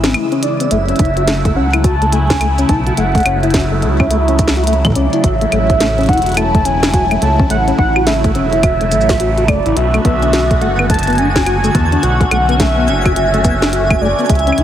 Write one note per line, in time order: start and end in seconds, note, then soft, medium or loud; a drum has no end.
0.00 0.14 G#1 medium
0.00 0.67 C#3 medium
0.00 0.67 E3 medium
0.00 0.67 G#3 medium
0.00 0.16 C4 medium
0.00 0.67 E4 medium
0.00 0.10 E5 loud
0.00 0.73 E5 medium
0.00 snare loud
0.00 closed hi-hat medium
0.14 0.26 G#3 medium
0.14 closed hi-hat medium
0.14 claves medium
0.32 0.44 C#4 loud
0.32 closed hi-hat soft
0.43 0.49 E4 medium
0.43 0.73 D5 loud
0.43 closed hi-hat medium
0.60 0.67 C4 medium
0.60 closed hi-hat medium
0.71 0.93 F#1 loud
0.71 9.73 C#3 medium
0.71 9.73 F#3 medium
0.71 5.20 A3 medium
0.71 0.78 A3 loud
0.71 5.20 E4 medium
0.71 1.57 E5 loud
0.71 closed hi-hat loud
0.89 1.01 C#4 medium
0.89 closed hi-hat soft
0.96 closed hi-hat soft
0.99 1.58 F#1 loud
0.99 1.10 E4 loud
0.99 kick loud
0.99 closed hi-hat medium
1.05 closed hi-hat soft
1.17 1.24 F#4 medium
1.17 closed hi-hat soft
1.28 1.34 A3 loud
1.28 snare loud
1.28 closed hi-hat loud
1.45 1.52 A3 loud
1.45 kick loud
1.45 closed hi-hat soft
1.56 2.64 C#2 medium
1.56 1.67 C#4 medium
1.56 1.86 F#5 loud
1.73 1.84 E4 medium
1.73 closed hi-hat soft
1.73 claves medium
1.84 1.95 F#4 medium
1.84 2.14 A5 loud
1.84 kick loud
1.84 closed hi-hat loud
2.02 2.06 A3 medium
2.02 closed hi-hat soft
2.12 2.19 A3 medium
2.12 2.71 G#5 loud
2.12 closed hi-hat medium
2.30 2.37 C#4 medium
2.30 kick loud
2.30 snare loud
2.30 closed hi-hat soft
2.41 2.48 A3 loud
2.41 closed hi-hat loud
2.41 claves medium
2.58 2.71 C#4 medium
2.58 closed hi-hat soft
2.58 shaker medium
2.69 2.91 B1 loud
2.69 2.80 E4 loud
2.69 2.99 A5 loud
2.69 kick loud
2.69 closed hi-hat medium
2.87 2.94 F#4 medium
2.87 closed hi-hat soft
2.97 3.19 F#1 loud
2.97 3.04 A3 loud
2.97 3.25 F#5 loud
2.97 closed hi-hat loud
3.15 3.22 A3 loud
3.15 kick loud
3.15 closed hi-hat soft
3.18 closed hi-hat soft
3.20 closed hi-hat soft
3.23 closed hi-hat soft
3.26 3.84 F#1 loud
3.26 3.37 C#4 medium
3.26 3.39 F#5 loud
3.26 closed hi-hat medium
3.26 claves medium
3.43 3.54 E4 medium
3.43 closed hi-hat soft
3.50 snare loud
3.50 closed hi-hat soft
3.54 3.65 F#4 medium
3.54 4.97 E5 loud
3.54 kick loud
3.54 closed hi-hat loud
3.60 closed hi-hat soft
3.72 3.76 A3 medium
3.82 4.91 C#2 medium
3.82 3.89 A3 medium
3.82 closed hi-hat soft
4.00 4.07 C#4 medium
4.00 kick loud
4.00 claves medium
4.11 4.17 A3 loud
4.11 closed hi-hat loud
4.28 4.41 C#4 medium
4.28 closed hi-hat soft
4.39 4.50 E4 loud
4.39 kick loud
4.39 closed hi-hat medium
4.39 shaker medium
4.48 snare loud
4.56 4.63 F#4 medium
4.56 closed hi-hat soft
4.64 closed hi-hat soft
4.67 4.74 A3 loud
4.67 closed hi-hat loud
4.73 closed hi-hat soft
4.85 4.92 A3 loud
4.85 kick loud
4.85 kick medium
4.85 closed hi-hat soft
4.85 claves medium
4.87 kick medium
4.90 kick medium
4.92 kick soft
4.94 5.08 C#2 medium
4.94 5.07 C#4 medium
4.94 5.26 D5 loud
4.94 kick soft
4.94 closed hi-hat medium
5.13 5.23 E4 medium
5.13 closed hi-hat soft
5.24 5.46 A1 loud
5.24 14.26 A3 medium
5.24 9.73 E4 medium
5.24 5.35 F#4 medium
5.24 6.10 E5 loud
5.24 kick loud
5.24 closed hi-hat medium
5.41 5.46 A3 medium
5.41 closed hi-hat soft
5.52 6.10 A1 loud
5.52 5.59 A3 medium
5.52 closed hi-hat medium
5.52 claves medium
5.70 5.77 C#4 medium
5.70 kick loud
5.70 closed hi-hat soft
5.80 5.87 A3 loud
5.80 snare loud
5.80 closed hi-hat loud
5.98 6.10 C#4 medium
5.98 closed hi-hat soft
6.01 closed hi-hat soft
6.03 closed hi-hat soft
6.06 kick loud
6.06 closed hi-hat soft
6.09 7.17 E1 medium
6.09 6.20 E4 loud
6.09 6.38 F#5 loud
6.09 closed hi-hat soft
6.13 closed hi-hat soft
6.18 closed hi-hat soft
6.22 closed hi-hat soft
6.26 6.33 F#4 medium
6.26 closed hi-hat soft
6.29 closed hi-hat soft
6.32 closed hi-hat soft
6.34 6.67 A5 loud
6.34 closed hi-hat soft
6.37 6.44 A3 loud
6.37 closed hi-hat loud
6.37 claves medium
6.55 6.61 A3 loud
6.55 kick loud
6.55 closed hi-hat soft
6.65 6.77 C#4 medium
6.65 7.24 G#5 loud
6.65 closed hi-hat medium
6.83 6.93 E4 medium
6.83 snare loud
6.83 closed hi-hat soft
6.94 7.05 F#4 medium
6.94 kick loud
6.94 closed hi-hat loud
7.11 7.15 A3 medium
7.11 closed hi-hat soft
7.11 claves medium
7.22 7.44 C#2 loud
7.22 7.29 A3 medium
7.22 7.50 A5 loud
7.22 closed hi-hat medium
7.39 7.46 C#4 medium
7.39 kick loud
7.50 7.72 A1 loud
7.50 7.57 A3 loud
7.50 7.63 F#5 loud
7.50 closed hi-hat medium
7.68 7.80 C#4 medium
7.68 closed hi-hat soft
7.79 8.37 A1 loud
7.79 7.90 E4 loud
7.79 8.05 F#5 loud
7.79 kick loud
7.96 8.03 F#4 medium
7.96 claves medium
8.07 8.14 A3 loud
8.07 9.50 E5 loud
8.07 snare loud
8.07 closed hi-hat medium
8.24 8.31 A3 loud
8.24 kick loud
8.24 closed hi-hat soft
8.35 8.93 E1 medium
8.35 8.46 C#4 medium
8.35 closed hi-hat soft
8.53 8.63 E4 medium
8.53 closed hi-hat soft
8.63 8.75 F#4 medium
8.63 kick loud
8.63 closed hi-hat medium
8.63 claves medium
8.81 8.85 A3 medium
8.81 closed hi-hat soft
8.92 9.50 A1 loud
8.92 9.08 A3 medium
8.92 closed hi-hat medium
8.92 shaker medium
9.01 shaker medium
9.09 9.16 A3 medium
9.09 kick loud
9.09 snare loud
9.09 closed hi-hat soft
9.09 shaker soft
9.20 9.31 F#4 medium
9.20 closed hi-hat medium
9.38 9.44 F#4 medium
9.38 closed hi-hat soft
9.48 9.61 F#1 medium
9.48 9.59 A3 loud
9.48 9.78 D5 medium
9.48 kick loud
9.48 closed hi-hat medium
9.48 claves medium
9.66 9.74 A1 loud
9.66 9.76 E4 medium
9.66 closed hi-hat soft
9.77 9.99 B1 loud
9.77 14.26 D3 medium
9.77 12.01 B3 medium
9.77 9.88 F#4 medium
9.77 14.25 F#4 medium
9.77 10.63 E5 loud
9.77 14.64 G#5 medium
9.77 closed hi-hat medium
9.94 10.01 A3 loud
9.94 closed hi-hat soft
9.94 claves medium
10.05 10.63 B1 loud
10.05 10.16 B3 medium
10.05 kick loud
10.05 closed hi-hat medium
10.22 10.33 D4 medium
10.22 closed hi-hat soft
10.33 10.44 F#4 medium
10.33 snare loud
10.33 closed hi-hat medium
10.51 10.55 A3 medium
10.51 kick loud
10.51 closed hi-hat soft
10.61 11.70 F#1 medium
10.61 10.68 A3 medium
10.61 10.89 F#5 loud
10.61 closed hi-hat soft
10.79 10.86 B3 medium
10.79 claves medium
10.90 10.97 A3 loud
10.90 11.16 A5 loud
10.90 kick loud
10.90 closed hi-hat medium
10.94 closed hi-hat medium
10.99 closed hi-hat medium
11.03 closed hi-hat soft
11.07 11.20 B3 medium
11.07 closed hi-hat soft
11.10 closed hi-hat soft
11.13 closed hi-hat soft
11.15 closed hi-hat soft
11.18 11.29 D4 loud
11.18 11.76 G#5 loud
11.18 closed hi-hat medium
11.36 11.43 F#4 medium
11.36 kick loud
11.36 snare loud
11.36 closed hi-hat soft
11.46 11.58 F#4 medium
11.46 closed hi-hat medium
11.46 claves medium
11.64 11.71 A3 loud
11.64 closed hi-hat soft
11.64 shaker medium
11.75 11.97 E2 loud
11.75 11.86 B3 medium
11.75 12.05 A5 loud
11.75 kick loud
11.75 closed hi-hat medium
11.92 12.03 D4 medium
11.92 closed hi-hat soft
12.03 12.25 B1 loud
12.03 14.27 C#4 medium
12.03 12.14 F#4 medium
12.03 12.31 F#5 loud
12.03 closed hi-hat medium
12.21 12.25 A3 medium
12.21 kick loud
12.21 closed hi-hat soft
12.31 12.90 B1 loud
12.31 12.38 A3 medium
12.31 12.61 F#5 loud
12.31 closed hi-hat medium
12.31 claves medium
12.49 12.56 B3 medium
12.49 closed hi-hat soft
12.60 12.66 A3 loud
12.60 14.03 E5 loud
12.60 kick loud
12.60 snare loud
12.60 closed hi-hat medium
12.77 12.90 B3 medium
12.88 13.96 F#1 medium
12.88 12.99 D4 loud
12.88 closed hi-hat soft
13.06 13.12 F#4 medium
13.06 kick loud
13.06 closed hi-hat soft
13.06 claves medium
13.16 13.27 F#4 medium
13.16 closed hi-hat medium
13.34 13.41 A3 loud
13.34 closed hi-hat soft
13.45 13.56 B3 medium
13.45 kick loud
13.45 closed hi-hat medium
13.45 shaker medium
13.62 13.72 D4 medium
13.62 snare loud
13.62 closed hi-hat soft
13.73 13.84 F#4 medium
13.73 closed hi-hat medium
13.90 13.95 A3 medium
13.90 kick loud
13.90 closed hi-hat soft
13.90 claves medium
14.01 14.14 F#1 medium
14.01 14.08 A3 medium
14.01 14.31 D5 medium
14.19 14.25 B3 medium
14.19 closed hi-hat soft
14.26 14.36 G#3 loud
14.26 closed hi-hat soft
14.30 14.52 C#2 loud
14.30 14.64 C#3 medium
14.30 14.64 E3 medium
14.30 14.64 G#3 medium
14.30 14.64 E4 medium
14.30 14.64 E5 loud
14.30 kick loud
14.30 closed hi-hat medium
14.35 closed hi-hat soft
14.39 closed hi-hat soft
14.47 14.59 C#4 medium
14.47 closed hi-hat soft
14.52 claves medium
14.58 14.64 C#2 loud
14.58 14.64 E4 loud
14.58 closed hi-hat medium